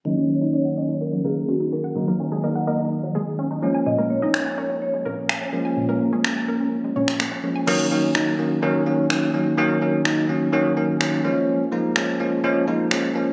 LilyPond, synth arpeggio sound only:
\new Staff \with { instrumentName = "Synth arpeggio sound" } { \time 4/4 \key ees \minor \tempo 4 = 126 ees16 ges16 des'16 ees'16 ees''16 ges''16 ees''16 ees'16 r16 ges16 ees16 r16 des'16 ees'16 r16 ges''16 | ees16 ges16 des'16 ees'16 ees''16 ges''16 ees''16 ees'16 r16 ges16 ees16 r16 des'16 ees'16 r16 aes''16 | bes,16 aes16 bes16 des'16 bes'16 aes''16 bes'16 des'16 r16 aes16 bes,16 r16 bes16 des'16 r16 aes''16 | bes,16 aes16 bes16 des'16 bes'16 aes''16 bes'16 des'16 r16 aes16 bes,16 r16 bes16 des'16 r16 aes''16 |
r1 | r1 | r1 | }